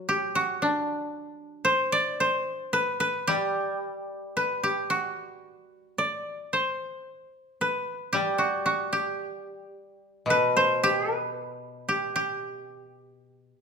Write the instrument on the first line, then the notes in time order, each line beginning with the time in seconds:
koto
Already playing: F#3 F#4
0.09 G4
0.35 F#4
0.62 D4
1.65 C5
1.92 D5
2.20 C5
2.73 B4
3.00 B4
3.27 G3 G4
4.37 B4
4.63 G4
4.90 F#4
5.98 D5
6.53 C5
7.61 B4
8.13 G3 G4
8.38 F#4
8.66 F#4
8.93 G4
10.26 B2
10.30 B4
10.57 C5
10.84 G4
11.17 B4
11.89 G4
12.16 G4